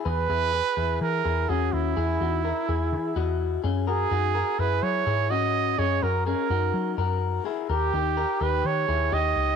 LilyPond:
<<
  \new Staff \with { instrumentName = "Trumpet" } { \time 4/4 \key e \lydian \tempo 4 = 126 b'2 ais'4 gis'8 e'8~ | e'2.~ e'8 r8 | gis'4. b'8 cis''4 dis''4 | cis''8 ais'8 ais'4. r4. |
g'4. b'8 cis''4 dis''4 | }
  \new Staff \with { instrumentName = "Clean electric guitar" } { \time 4/4 \key e \lydian <gis' b'>8 <e' gis'>8 <gis' b'>8 <e' gis'>4 <e' gis'>8 <cis' fis'>4 | <e' gis'>8 <dis' fis'>8 <e' ais'>8 <e' gis'>4 <fis' dis''>4 <cis' gis'>8 | <fis' ais'>8 <dis' fis'>8 <fis' ais'>8 <e' gis'>4 <e' gis'>8 <cis' fis'>4 | <cis' gis'>8 <fis' ais'>8 <cis' gis'>8 <dis' fis'>4 <fis' ais'>4 <e' gis'>8 |
<g' ais'>8 <dis' g'>8 <g' ais'>8 <dis' g'>4 <e' gis'>8 <dis' g'>4 | }
  \new Staff \with { instrumentName = "Picked electric bass" } { \clef bass \time 4/4 \key e \lydian e,8 e,8. r16 e,8 e8 e,8 e,8 dis,8 | e,8 e,8. r16 e,8 e8 e,4 fis,8~ | fis,8 fis,8. r16 fis,8 fis8 gis,4. | fis,8 fis,8. r16 fis,8 fis8 fis,4 r8 |
dis,8 dis,8. r16 dis,8 dis8 dis,8 dis,8 cis,8 | }
>>